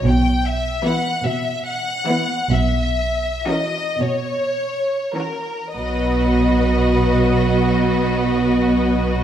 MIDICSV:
0, 0, Header, 1, 6, 480
1, 0, Start_track
1, 0, Key_signature, 5, "major"
1, 0, Tempo, 796813
1, 28, Time_signature, 6, 3, 24, 8
1, 989, Tempo, 859599
1, 1469, Tempo, 956938
1, 1949, Tempo, 1092896
1, 2429, Tempo, 1181102
1, 4333, End_track
2, 0, Start_track
2, 0, Title_t, "Violin section"
2, 0, Program_c, 0, 48
2, 38, Note_on_c, 0, 79, 55
2, 266, Note_off_c, 0, 79, 0
2, 273, Note_on_c, 0, 76, 63
2, 505, Note_off_c, 0, 76, 0
2, 510, Note_on_c, 0, 78, 60
2, 745, Note_on_c, 0, 76, 60
2, 748, Note_off_c, 0, 78, 0
2, 991, Note_off_c, 0, 76, 0
2, 1001, Note_on_c, 0, 78, 68
2, 1465, Note_off_c, 0, 78, 0
2, 1470, Note_on_c, 0, 76, 60
2, 1950, Note_off_c, 0, 76, 0
2, 1952, Note_on_c, 0, 75, 61
2, 2183, Note_off_c, 0, 75, 0
2, 2190, Note_on_c, 0, 73, 58
2, 2675, Note_on_c, 0, 70, 42
2, 2678, Note_off_c, 0, 73, 0
2, 2916, Note_on_c, 0, 75, 39
2, 2918, Note_off_c, 0, 70, 0
2, 4333, Note_off_c, 0, 75, 0
2, 4333, End_track
3, 0, Start_track
3, 0, Title_t, "Violin section"
3, 0, Program_c, 1, 48
3, 502, Note_on_c, 1, 71, 40
3, 504, Note_on_c, 1, 64, 43
3, 681, Note_off_c, 1, 71, 0
3, 682, Note_off_c, 1, 64, 0
3, 1225, Note_on_c, 1, 64, 41
3, 1229, Note_on_c, 1, 71, 42
3, 1406, Note_off_c, 1, 64, 0
3, 1408, Note_off_c, 1, 71, 0
3, 1954, Note_on_c, 1, 66, 46
3, 1955, Note_on_c, 1, 70, 46
3, 2123, Note_off_c, 1, 66, 0
3, 2124, Note_off_c, 1, 70, 0
3, 2674, Note_on_c, 1, 70, 33
3, 2675, Note_on_c, 1, 66, 28
3, 2857, Note_off_c, 1, 70, 0
3, 2858, Note_off_c, 1, 66, 0
3, 2918, Note_on_c, 1, 66, 33
3, 2919, Note_on_c, 1, 71, 30
3, 4333, Note_off_c, 1, 66, 0
3, 4333, Note_off_c, 1, 71, 0
3, 4333, End_track
4, 0, Start_track
4, 0, Title_t, "Viola section"
4, 0, Program_c, 2, 48
4, 497, Note_on_c, 2, 59, 42
4, 498, Note_on_c, 2, 52, 42
4, 679, Note_off_c, 2, 52, 0
4, 679, Note_off_c, 2, 59, 0
4, 1226, Note_on_c, 2, 52, 45
4, 1227, Note_on_c, 2, 59, 51
4, 1407, Note_off_c, 2, 52, 0
4, 1407, Note_off_c, 2, 59, 0
4, 1953, Note_on_c, 2, 52, 43
4, 1953, Note_on_c, 2, 61, 45
4, 2123, Note_off_c, 2, 52, 0
4, 2123, Note_off_c, 2, 61, 0
4, 2673, Note_on_c, 2, 61, 34
4, 2674, Note_on_c, 2, 52, 35
4, 2856, Note_off_c, 2, 61, 0
4, 2857, Note_off_c, 2, 52, 0
4, 2917, Note_on_c, 2, 54, 33
4, 2918, Note_on_c, 2, 59, 31
4, 4333, Note_off_c, 2, 54, 0
4, 4333, Note_off_c, 2, 59, 0
4, 4333, End_track
5, 0, Start_track
5, 0, Title_t, "Cello section"
5, 0, Program_c, 3, 48
5, 27, Note_on_c, 3, 47, 53
5, 607, Note_off_c, 3, 47, 0
5, 742, Note_on_c, 3, 47, 54
5, 1335, Note_off_c, 3, 47, 0
5, 1469, Note_on_c, 3, 47, 58
5, 2058, Note_off_c, 3, 47, 0
5, 2183, Note_on_c, 3, 47, 52
5, 2795, Note_off_c, 3, 47, 0
5, 2917, Note_on_c, 3, 47, 33
5, 4333, Note_off_c, 3, 47, 0
5, 4333, End_track
6, 0, Start_track
6, 0, Title_t, "Double bass section"
6, 0, Program_c, 4, 48
6, 28, Note_on_c, 4, 35, 51
6, 475, Note_off_c, 4, 35, 0
6, 1473, Note_on_c, 4, 35, 54
6, 1931, Note_off_c, 4, 35, 0
6, 2919, Note_on_c, 4, 35, 33
6, 4333, Note_off_c, 4, 35, 0
6, 4333, End_track
0, 0, End_of_file